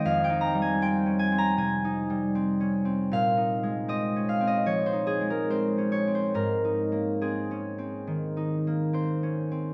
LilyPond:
\new Staff \with { instrumentName = "Harp" } { \time 4/4 \key aes \major \tempo 4 = 76 << { <ees'' f'' g'' aes''>16 g''16 bes''16 aes''16 g''8 aes''16 bes''16 aes''2 | f''4 ees''8 f''16 ees''16 des''16 c''16 aes'16 bes'16 c''8 des''16 c''16 | bes'4 aes'2 c''4 | } \\ { \tuplet 3/2 { <f, aes c' ees'>8 ees'8 g8 c'8 des'8 c'8 c8 ees'8 g8 c'8 des'8 c'8 } | \tuplet 3/2 { bes,8 ees'8 aes8 c'8 des'8 c'8 f8 ees'8 aes8 c'8 des'8 c'8 } | \tuplet 3/2 { aes,8 ees'8 bes8 c'8 des'8 c'8 ees8 ees'8 bes8 c'8 des'8 c'8 } | } >> }